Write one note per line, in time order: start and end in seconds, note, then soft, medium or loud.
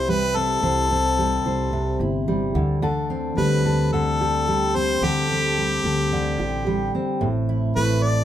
0.00 0.59 C2 medium
0.00 0.62 C3 medium
0.00 0.36 C4 soft
0.00 1.99 E4 soft
0.00 0.11 C5 medium
0.00 0.63 C5 medium
0.08 1.18 G3 medium
0.08 0.38 B4 medium
0.36 0.91 C4 soft
0.36 2.01 A4 medium
0.63 1.41 C2 medium
0.63 1.72 C3 medium
0.63 1.46 C5 medium
0.91 2.85 C4 soft
1.18 2.27 G3 medium
1.45 1.96 C2 medium
1.45 2.83 C5 medium
1.73 2.60 C3 medium
2.00 2.51 G1 medium
2.00 2.61 E4 medium
2.28 2.86 G3 medium
2.55 3.33 D2 medium
2.55 2.81 D3 medium
2.82 3.92 D3 medium
2.82 3.65 A4 medium
3.10 4.75 C4 soft
3.37 4.98 D2 medium
3.37 4.47 G3 medium
3.37 3.88 B4 medium
3.65 5.03 A4 medium
3.92 5.02 D3 medium
3.92 4.77 A4 medium
4.21 6.38 G4 medium
4.48 5.56 G3 medium
4.75 5.30 C4 soft
4.75 5.06 C5 medium
5.01 5.80 D2 medium
5.01 6.11 D3 medium
5.01 6.95 G4 medium
5.01 5.84 A4 medium
5.31 6.94 C4 soft
5.58 6.65 G3 medium
5.84 6.35 D2 medium
5.84 8.24 A4 medium
6.12 7.27 D3 medium
6.38 6.89 A1 medium
6.38 7.27 G4 soft
6.67 7.27 G3 medium
6.95 8.24 C4 soft
7.21 7.72 A1 medium
7.21 8.24 A2 medium
7.49 8.24 E4 soft
7.76 8.24 A1 medium
7.76 8.24 A3 medium
7.76 8.05 B4 medium
8.03 8.24 D5 medium